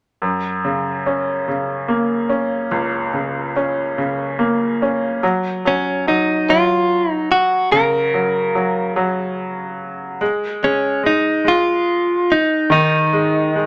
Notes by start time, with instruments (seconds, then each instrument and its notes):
0.22 upright piano F#2
0.65 upright piano C#3
1.06 upright piano C#4
1.48 upright piano C#3
1.88 upright piano A#3
2.29 upright piano C#4
2.71 upright piano C#2
3.14 upright piano C#3
3.56 upright piano C#4
3.98 upright piano C#3
4.39 upright piano A#3
4.82 upright piano C#4
5.23 upright piano F#3
5.65 upright piano F#3, clean electric guitar C#4
6.07 upright piano F#3, clean electric guitar D#4
6.49 upright piano F#3, clean electric guitar F4
7.11 clean electric guitar D#4
7.32 clean electric guitar F#4
7.72 upright piano C#3, clean electric guitar A#4
8.14 upright piano F#3
8.55 upright piano F#3
8.96 upright piano F#3
10.21 upright piano G#3
10.63 upright piano G#3, clean electric guitar C#4
11.03 upright piano G#3, clean electric guitar D#4
11.45 upright piano G#3, clean electric guitar F4
12.32 clean electric guitar D#4
12.70 upright piano D#3, clean electric guitar D#4
13.13 upright piano G#3
13.56 upright piano G#3